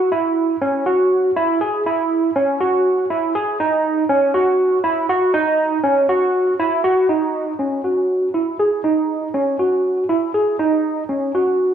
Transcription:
0.12 0.55 E4 medium
0.61 0.83 C#4 medium
0.86 1.29 F#4 medium
1.36 1.58 E4 medium
1.61 1.83 G#4 medium
1.86 2.29 E4 medium
2.36 2.57 C#4 medium
2.61 3.04 F#4 medium
3.10 3.32 E4 medium
3.35 3.57 G#4 medium
3.60 4.03 D#4 medium
4.09 4.31 C#4 medium
4.34 4.78 F#4 medium
4.84 5.06 E4 medium
5.09 5.31 F#4 medium
5.34 5.77 D#4 medium
5.84 6.05 C#4 medium
6.09 6.52 F#4 medium
6.59 6.81 E4 medium
6.84 7.06 F#4 medium
7.09 7.52 D#4 medium
7.59 7.81 C#4 medium
7.84 8.27 F#4 medium
8.34 8.56 E4 medium
8.59 8.81 G#4 medium
8.84 9.28 D#4 medium
9.34 9.56 C#4 medium
9.59 10.03 F#4 medium
10.09 10.31 E4 medium
10.34 10.56 G#4 medium
10.60 11.03 D#4 medium
11.09 11.31 C#4 medium
11.35 11.74 F#4 medium

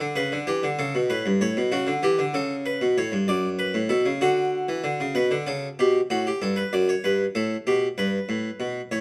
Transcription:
0.00 0.16 D3 medium
0.16 0.31 C#3 medium
0.16 0.35 B4 medium
0.32 0.47 D3 medium
0.47 0.62 E3 medium
0.47 0.67 G4 medium
0.63 0.78 D3 medium
0.79 0.94 C#3 medium
0.79 0.98 A4 medium
0.95 1.10 B2 medium
1.10 1.25 A2 medium
1.10 1.29 B4 medium
1.26 1.41 G2 medium
1.41 1.56 A2 medium
1.41 1.60 C#5 medium
1.57 1.72 B2 medium
1.72 1.87 C#3 medium
1.72 1.91 F#4 medium
1.87 2.02 D3 medium
2.03 2.18 E3 medium
2.03 2.22 G4 medium
2.19 2.34 D3 medium
2.34 2.80 C#3 medium
2.34 2.54 A4 medium
2.66 2.85 B4 medium
2.81 2.97 B2 medium
2.98 3.13 A2 medium
2.98 3.17 C#5 medium
3.12 3.28 G2 medium
3.28 3.73 F#2 medium
3.28 3.48 D5 medium
3.59 3.78 B4 medium
3.74 3.90 A2 medium
3.89 4.05 B2 medium
3.89 4.09 A4 medium
4.06 4.21 C#3 medium
4.21 4.67 D3 medium
4.21 5.13 F#4 medium
4.69 4.84 E3 medium
4.84 4.99 D3 medium
5.00 5.16 C#3 medium
5.15 5.31 B2 medium
5.15 5.35 B4 medium
5.31 5.47 D3 medium
5.47 5.67 C#3 medium
5.47 5.67 A4 medium
5.79 5.99 B2 medium
5.79 5.99 G4 medium
6.10 6.30 A2 medium
6.10 6.26 F#4 medium
6.27 6.42 G4 medium
6.42 6.61 G2 medium
6.42 6.57 A4 medium
6.56 6.72 B4 medium
6.73 6.92 F#2 medium
6.73 6.88 D5 medium
6.89 7.04 C#5 medium
7.04 7.24 G2 medium
7.04 7.24 B4 medium
7.35 7.55 A2 medium
7.35 7.55 A4 medium
7.67 7.86 B2 medium
7.67 7.86 G4 medium
7.98 8.17 G2 medium
7.98 8.89 B4 medium
8.29 8.48 A2 medium
8.60 8.79 B2 medium
8.91 9.01 A2 medium
8.91 9.01 C#5 medium

